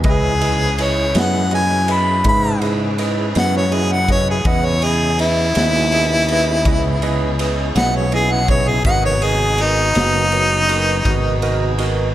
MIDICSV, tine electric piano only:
0, 0, Header, 1, 2, 480
1, 0, Start_track
1, 0, Tempo, 734394
1, 31, Time_signature, 12, 3, 24, 8
1, 7939, End_track
2, 0, Start_track
2, 0, Title_t, "Tine electric piano"
2, 0, Program_c, 0, 4
2, 27, Note_on_c, 0, 64, 60
2, 28, Note_on_c, 0, 68, 53
2, 31, Note_on_c, 0, 71, 54
2, 31, Note_on_c, 0, 75, 69
2, 209, Note_off_c, 0, 64, 0
2, 210, Note_off_c, 0, 68, 0
2, 211, Note_off_c, 0, 71, 0
2, 211, Note_off_c, 0, 75, 0
2, 271, Note_on_c, 0, 64, 48
2, 272, Note_on_c, 0, 71, 44
2, 273, Note_on_c, 0, 68, 41
2, 274, Note_on_c, 0, 75, 51
2, 452, Note_off_c, 0, 64, 0
2, 452, Note_off_c, 0, 71, 0
2, 453, Note_off_c, 0, 68, 0
2, 453, Note_off_c, 0, 75, 0
2, 521, Note_on_c, 0, 64, 47
2, 522, Note_on_c, 0, 71, 46
2, 522, Note_on_c, 0, 75, 52
2, 523, Note_on_c, 0, 68, 44
2, 697, Note_off_c, 0, 64, 0
2, 697, Note_off_c, 0, 71, 0
2, 697, Note_off_c, 0, 75, 0
2, 698, Note_off_c, 0, 68, 0
2, 753, Note_on_c, 0, 64, 51
2, 753, Note_on_c, 0, 75, 56
2, 754, Note_on_c, 0, 68, 46
2, 756, Note_on_c, 0, 71, 46
2, 933, Note_off_c, 0, 64, 0
2, 933, Note_off_c, 0, 75, 0
2, 934, Note_off_c, 0, 68, 0
2, 934, Note_off_c, 0, 71, 0
2, 996, Note_on_c, 0, 68, 49
2, 998, Note_on_c, 0, 64, 56
2, 998, Note_on_c, 0, 75, 57
2, 1001, Note_on_c, 0, 71, 43
2, 1175, Note_off_c, 0, 68, 0
2, 1175, Note_off_c, 0, 75, 0
2, 1176, Note_off_c, 0, 64, 0
2, 1177, Note_off_c, 0, 71, 0
2, 1229, Note_on_c, 0, 71, 45
2, 1230, Note_on_c, 0, 68, 44
2, 1231, Note_on_c, 0, 64, 54
2, 1234, Note_on_c, 0, 75, 55
2, 1411, Note_off_c, 0, 71, 0
2, 1412, Note_off_c, 0, 64, 0
2, 1412, Note_off_c, 0, 68, 0
2, 1413, Note_off_c, 0, 75, 0
2, 1478, Note_on_c, 0, 64, 50
2, 1479, Note_on_c, 0, 68, 44
2, 1479, Note_on_c, 0, 76, 51
2, 1480, Note_on_c, 0, 71, 49
2, 1656, Note_off_c, 0, 64, 0
2, 1656, Note_off_c, 0, 68, 0
2, 1656, Note_off_c, 0, 76, 0
2, 1657, Note_off_c, 0, 71, 0
2, 1713, Note_on_c, 0, 68, 56
2, 1714, Note_on_c, 0, 64, 58
2, 1715, Note_on_c, 0, 71, 53
2, 1719, Note_on_c, 0, 75, 63
2, 1893, Note_off_c, 0, 68, 0
2, 1894, Note_off_c, 0, 64, 0
2, 1895, Note_off_c, 0, 71, 0
2, 1896, Note_off_c, 0, 75, 0
2, 1955, Note_on_c, 0, 64, 57
2, 1955, Note_on_c, 0, 68, 57
2, 1955, Note_on_c, 0, 71, 52
2, 1956, Note_on_c, 0, 75, 63
2, 2134, Note_off_c, 0, 64, 0
2, 2134, Note_off_c, 0, 68, 0
2, 2135, Note_off_c, 0, 71, 0
2, 2135, Note_off_c, 0, 75, 0
2, 2192, Note_on_c, 0, 68, 42
2, 2193, Note_on_c, 0, 64, 53
2, 2195, Note_on_c, 0, 71, 49
2, 2196, Note_on_c, 0, 75, 51
2, 2373, Note_off_c, 0, 68, 0
2, 2374, Note_off_c, 0, 64, 0
2, 2374, Note_off_c, 0, 71, 0
2, 2375, Note_off_c, 0, 75, 0
2, 2429, Note_on_c, 0, 68, 46
2, 2432, Note_on_c, 0, 71, 50
2, 2433, Note_on_c, 0, 75, 54
2, 2434, Note_on_c, 0, 64, 46
2, 2612, Note_off_c, 0, 68, 0
2, 2613, Note_off_c, 0, 71, 0
2, 2614, Note_off_c, 0, 64, 0
2, 2614, Note_off_c, 0, 75, 0
2, 2677, Note_on_c, 0, 71, 49
2, 2678, Note_on_c, 0, 64, 51
2, 2678, Note_on_c, 0, 75, 61
2, 2680, Note_on_c, 0, 68, 50
2, 2856, Note_off_c, 0, 64, 0
2, 2856, Note_off_c, 0, 71, 0
2, 2856, Note_off_c, 0, 75, 0
2, 2857, Note_off_c, 0, 68, 0
2, 2917, Note_on_c, 0, 71, 59
2, 2917, Note_on_c, 0, 75, 71
2, 2918, Note_on_c, 0, 64, 67
2, 2921, Note_on_c, 0, 68, 58
2, 3096, Note_off_c, 0, 64, 0
2, 3096, Note_off_c, 0, 71, 0
2, 3096, Note_off_c, 0, 75, 0
2, 3098, Note_off_c, 0, 68, 0
2, 3158, Note_on_c, 0, 68, 42
2, 3160, Note_on_c, 0, 64, 50
2, 3162, Note_on_c, 0, 71, 46
2, 3162, Note_on_c, 0, 75, 54
2, 3336, Note_off_c, 0, 68, 0
2, 3337, Note_off_c, 0, 64, 0
2, 3338, Note_off_c, 0, 71, 0
2, 3338, Note_off_c, 0, 75, 0
2, 3400, Note_on_c, 0, 64, 48
2, 3401, Note_on_c, 0, 75, 55
2, 3403, Note_on_c, 0, 68, 49
2, 3403, Note_on_c, 0, 71, 46
2, 3577, Note_off_c, 0, 64, 0
2, 3578, Note_off_c, 0, 71, 0
2, 3578, Note_off_c, 0, 75, 0
2, 3579, Note_off_c, 0, 68, 0
2, 3637, Note_on_c, 0, 64, 56
2, 3637, Note_on_c, 0, 68, 51
2, 3637, Note_on_c, 0, 75, 58
2, 3641, Note_on_c, 0, 71, 48
2, 3816, Note_off_c, 0, 64, 0
2, 3816, Note_off_c, 0, 68, 0
2, 3816, Note_off_c, 0, 75, 0
2, 3817, Note_off_c, 0, 71, 0
2, 3879, Note_on_c, 0, 75, 58
2, 3880, Note_on_c, 0, 64, 50
2, 3882, Note_on_c, 0, 68, 49
2, 3883, Note_on_c, 0, 71, 53
2, 4056, Note_off_c, 0, 75, 0
2, 4057, Note_off_c, 0, 64, 0
2, 4058, Note_off_c, 0, 68, 0
2, 4058, Note_off_c, 0, 71, 0
2, 4127, Note_on_c, 0, 75, 70
2, 4130, Note_on_c, 0, 68, 58
2, 4131, Note_on_c, 0, 64, 62
2, 4131, Note_on_c, 0, 71, 58
2, 4300, Note_off_c, 0, 75, 0
2, 4302, Note_off_c, 0, 68, 0
2, 4302, Note_off_c, 0, 71, 0
2, 4303, Note_off_c, 0, 64, 0
2, 4359, Note_on_c, 0, 64, 61
2, 4360, Note_on_c, 0, 75, 62
2, 4361, Note_on_c, 0, 71, 57
2, 4362, Note_on_c, 0, 68, 56
2, 4536, Note_off_c, 0, 64, 0
2, 4537, Note_off_c, 0, 71, 0
2, 4537, Note_off_c, 0, 75, 0
2, 4538, Note_off_c, 0, 68, 0
2, 4594, Note_on_c, 0, 68, 63
2, 4595, Note_on_c, 0, 75, 73
2, 4596, Note_on_c, 0, 64, 72
2, 4598, Note_on_c, 0, 71, 65
2, 4774, Note_off_c, 0, 68, 0
2, 4774, Note_off_c, 0, 75, 0
2, 4775, Note_off_c, 0, 64, 0
2, 4776, Note_off_c, 0, 71, 0
2, 4838, Note_on_c, 0, 68, 56
2, 4841, Note_on_c, 0, 64, 58
2, 4841, Note_on_c, 0, 71, 56
2, 4841, Note_on_c, 0, 75, 67
2, 5016, Note_off_c, 0, 68, 0
2, 5017, Note_off_c, 0, 64, 0
2, 5017, Note_off_c, 0, 71, 0
2, 5017, Note_off_c, 0, 75, 0
2, 5075, Note_on_c, 0, 71, 50
2, 5077, Note_on_c, 0, 64, 57
2, 5077, Note_on_c, 0, 68, 46
2, 5077, Note_on_c, 0, 75, 57
2, 5254, Note_off_c, 0, 71, 0
2, 5255, Note_off_c, 0, 64, 0
2, 5255, Note_off_c, 0, 68, 0
2, 5255, Note_off_c, 0, 75, 0
2, 5314, Note_on_c, 0, 71, 46
2, 5316, Note_on_c, 0, 64, 54
2, 5316, Note_on_c, 0, 75, 63
2, 5319, Note_on_c, 0, 68, 50
2, 5493, Note_off_c, 0, 71, 0
2, 5494, Note_off_c, 0, 64, 0
2, 5494, Note_off_c, 0, 75, 0
2, 5496, Note_off_c, 0, 68, 0
2, 5560, Note_on_c, 0, 68, 52
2, 5560, Note_on_c, 0, 71, 50
2, 5561, Note_on_c, 0, 64, 51
2, 5561, Note_on_c, 0, 75, 63
2, 5736, Note_off_c, 0, 68, 0
2, 5736, Note_off_c, 0, 71, 0
2, 5737, Note_off_c, 0, 64, 0
2, 5737, Note_off_c, 0, 75, 0
2, 5793, Note_on_c, 0, 66, 67
2, 5795, Note_on_c, 0, 75, 69
2, 5797, Note_on_c, 0, 71, 57
2, 5798, Note_on_c, 0, 70, 60
2, 5973, Note_off_c, 0, 66, 0
2, 5974, Note_off_c, 0, 71, 0
2, 5974, Note_off_c, 0, 75, 0
2, 5975, Note_off_c, 0, 70, 0
2, 6030, Note_on_c, 0, 66, 49
2, 6035, Note_on_c, 0, 70, 44
2, 6036, Note_on_c, 0, 71, 43
2, 6036, Note_on_c, 0, 75, 50
2, 6211, Note_off_c, 0, 66, 0
2, 6213, Note_off_c, 0, 70, 0
2, 6214, Note_off_c, 0, 71, 0
2, 6214, Note_off_c, 0, 75, 0
2, 6272, Note_on_c, 0, 70, 49
2, 6275, Note_on_c, 0, 75, 59
2, 6276, Note_on_c, 0, 66, 51
2, 6277, Note_on_c, 0, 71, 47
2, 6452, Note_off_c, 0, 70, 0
2, 6453, Note_off_c, 0, 75, 0
2, 6454, Note_off_c, 0, 66, 0
2, 6454, Note_off_c, 0, 71, 0
2, 6507, Note_on_c, 0, 70, 52
2, 6508, Note_on_c, 0, 71, 50
2, 6509, Note_on_c, 0, 75, 61
2, 6510, Note_on_c, 0, 66, 55
2, 6689, Note_off_c, 0, 70, 0
2, 6690, Note_off_c, 0, 66, 0
2, 6690, Note_off_c, 0, 71, 0
2, 6690, Note_off_c, 0, 75, 0
2, 6745, Note_on_c, 0, 66, 59
2, 6747, Note_on_c, 0, 70, 49
2, 6748, Note_on_c, 0, 71, 51
2, 6750, Note_on_c, 0, 73, 59
2, 6928, Note_off_c, 0, 66, 0
2, 6929, Note_off_c, 0, 70, 0
2, 6929, Note_off_c, 0, 71, 0
2, 6930, Note_off_c, 0, 73, 0
2, 6985, Note_on_c, 0, 70, 54
2, 6985, Note_on_c, 0, 75, 73
2, 6986, Note_on_c, 0, 71, 56
2, 6987, Note_on_c, 0, 66, 63
2, 7167, Note_off_c, 0, 70, 0
2, 7167, Note_off_c, 0, 75, 0
2, 7168, Note_off_c, 0, 71, 0
2, 7169, Note_off_c, 0, 66, 0
2, 7230, Note_on_c, 0, 71, 57
2, 7231, Note_on_c, 0, 70, 60
2, 7233, Note_on_c, 0, 66, 67
2, 7236, Note_on_c, 0, 75, 66
2, 7410, Note_off_c, 0, 70, 0
2, 7410, Note_off_c, 0, 71, 0
2, 7411, Note_off_c, 0, 66, 0
2, 7413, Note_off_c, 0, 75, 0
2, 7469, Note_on_c, 0, 66, 66
2, 7469, Note_on_c, 0, 71, 62
2, 7470, Note_on_c, 0, 70, 67
2, 7471, Note_on_c, 0, 75, 76
2, 7649, Note_off_c, 0, 66, 0
2, 7649, Note_off_c, 0, 71, 0
2, 7650, Note_off_c, 0, 70, 0
2, 7650, Note_off_c, 0, 75, 0
2, 7709, Note_on_c, 0, 66, 58
2, 7709, Note_on_c, 0, 71, 55
2, 7710, Note_on_c, 0, 75, 62
2, 7712, Note_on_c, 0, 70, 57
2, 7889, Note_off_c, 0, 66, 0
2, 7889, Note_off_c, 0, 71, 0
2, 7890, Note_off_c, 0, 75, 0
2, 7891, Note_off_c, 0, 70, 0
2, 7939, End_track
0, 0, End_of_file